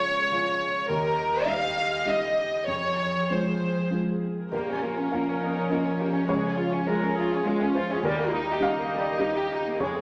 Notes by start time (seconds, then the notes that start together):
Already playing: C#2 F3 G#3 F4 G#4 C#5
0.31 F3 F4 G#4
0.89 D#2 G3 G4 A#4 D#5
1.45 G3 D#4 G4 F5
2.05 G3 D#4 G4 D#5
2.67 F2 F3 G#4 C#5
3.30 G#3 C4 F4 C5
3.90 G#3 C4 F4
4.50 A#1 F3 A#3 G4 A#4 C#5
4.69 C#4
4.82 A#3 F4
4.97 C#4
5.11 A#3 C#4 F4 F5
5.30 C#4
5.40 A#3 D#4
5.57 C#4
5.70 A#3 C#4 F4 D#5
5.86 C#4
6.00 A#3 G4
6.12 C#4
6.26 C#2 G#3 G#4 C#5
6.42 C#4
6.56 F4
6.71 C#4
6.87 G#3 F4 A#4
7.01 C#4
7.15 F4 G#4
7.33 C#4
7.43 G#3 F4
7.60 C#4
7.75 F4 C5
7.90 C#4 G#4
8.02 D#2 G3 G4 A#4 D#5
8.06 G3
8.19 A#3
8.31 D#4
8.35 D#4
8.51 G4
8.60 G3 D#4 G4 F5
8.65 D#4
8.79 A#3
8.94 G3
9.10 A#3
9.18 G3 D#4 G4 D#5
9.22 D#4
9.36 G4
9.53 D#4
9.67 A#3
9.79 F2 G#3 F4 G#4 C#5
9.96 C4